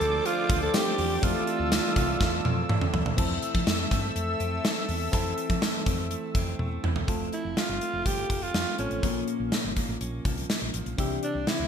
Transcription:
Already playing: D3 A3 C4 D4 F4 A4 C5 D5 D6
0.01 D2 F3, closed hi-hat
0.25 A3 F4, closed hi-hat
0.49 D2 C4, kick, closed hi-hat
0.63 A4
0.74 F3 A3 C4 D4 F4 G4 C5, snare, closed hi-hat, tambourine
0.98 E2 A3, open hi-hat
1.22 F2 E3 A3 C4 F4 A4 E5 F5 E6, kick, closed hi-hat
1.47 A3, closed hi-hat
1.59 D2
1.71 C4, snare, closed hi-hat, tambourine
1.96 C2 E3, kick, closed hi-hat
2.20 E2 A3, kick, snare
2.45 F2 C4, high tom
2.69 E3, mid tom
2.81 mid tom
2.93 E2 A3, floor tom
3.06 floor tom
3.17 F2 E3 C4 E4 A4 E5 E6, kick, crash
3.42 E3, closed hi-hat
3.55 F3, kick
3.67 F2 A3, snare, closed hi-hat
3.91 G2 C4, kick, closed hi-hat
4.16 F2 A3, closed hi-hat
4.40 F2 C4, closed hi-hat
4.64 A3, snare, closed hi-hat
4.89 E2 E3, open hi-hat
5.12 F2 E3 C4 E4 A4, kick, closed hi-hat
5.37 E3, closed hi-hat
5.50 F3, kick
5.62 A3, snare, closed hi-hat
5.86 F2 C4, kick, closed hi-hat
6.10 A3, closed hi-hat
6.35 F2 C4, kick, closed hi-hat
6.59 E2 A3, high tom
6.84 E2 E3, mid tom
6.96 floor tom
7.07 F1 F3 A3 C4 F4 A4, kick, closed hi-hat
7.32 A3 E4, closed hi-hat
7.45 F1
7.57 F3 F4, snare, closed hi-hat
7.69 G1
7.81 A3, closed hi-hat
7.93 F1
8.06 G1 C4 G4, kick, closed hi-hat
8.30 F1 F3, kick, closed hi-hat
8.42 F4, closed hi-hat
8.54 F2 A3, snare, closed hi-hat
8.78 A1 F3 A3 C4 C#4 F4 A4, closed hi-hat
8.91 A1, closed hi-hat
9.02 A#1 A#2 F3 A#3 C#4 F4 A#4, kick, closed hi-hat
9.27 A#3, closed hi-hat
9.40 A#1
9.52 F3, snare, closed hi-hat
9.64 G1
9.76 A#3, kick, closed hi-hat
9.89 A1
10.01 A#1 C#4, closed hi-hat
10.25 C2 F3, kick, closed hi-hat
10.38 closed hi-hat
10.50 A#3, snare, closed hi-hat
10.62 A#1
10.74 A1 F3, closed hi-hat
10.86 A#1, closed hi-hat
10.97 C2 C3 E3 C4 D4 G4 E5, kick, closed hi-hat
11.23 D4, closed hi-hat
11.35 C2
11.47 C4 E4, snare, closed hi-hat
11.59 D2

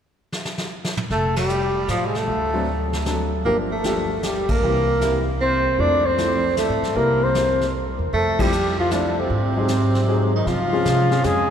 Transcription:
0.32 snare
0.45 snare
0.58 snare
0.84 snare
0.97 mid tom
1.10 F1 A3 A4, brush sweep, kick, snare
1.36 G3 G4, snare, ride
1.49 hi-hat pedal
1.88 A2 F3 F4, snare, hi-hat pedal
2.06 G#3 G#4
2.15 A3 A4, snare
2.27 D2, brush sweep, kick
2.54 F#3 A3 C4 D4 A4
2.93 snare
3.06 F#3 A3 C4 D4 A4, snare, hi-hat pedal
3.45 G1 F3 G3 A#3 D4 G4 A#4, brush sweep, kick
3.71 A3 A4
3.84 F3 G3 A#3 D4 G4, snare, hi-hat pedal
4.23 G3 G4, snare, hi-hat pedal
4.49 A#3 A#4, kick, ride
4.62 C2 E3 G3 A#3 C4 G4, brush sweep
5.01 E3 G3 A#3 C4 E4, snare, hi-hat pedal
5.41 C4 C5
5.79 F2 F3 A3 C4 D4 E4 A4 D5, brush sweep, kick
6.05 C4 C5
6.18 F3 A3 C4 E4 A4, snare, hi-hat pedal
6.57 A3 A4, snare, hi-hat pedal
6.69 A2
6.82 G2, snare
6.96 C2 G3 A#3 C4 E4 A#4, brush sweep, kick
7.23 C4 C5
7.35 snare, hi-hat pedal
7.61 snare
7.99 E2
8.13 F2 A3 A4, brush sweep, kick
8.39 F3 G3 A3 C4 E4 G4, kick, ride
8.52 hi-hat pedal
8.79 F3 F4
8.91 D3 F3 A3 C4 D4 E4 A4, snare, hi-hat pedal
9.19 C3 C4
9.30 G#2, brush sweep, kick
9.56 F#3 G#3 C4 D#4 G#4
9.68 snare, hi-hat pedal
9.95 snare
10.08 F#3 G#3 C4 D#4 G#4
10.35 D#3 D#4
10.46 C#3 F3 F4, brush sweep, kick, snare
10.73 F3 G#3 C4 C#4 G#4
10.85 C3, kick, snare, hi-hat pedal
11.11 F3 G#3 C4 C#4 G#4, snare
11.24 F2 G#3 G#4, kick, snare, hi-hat pedal

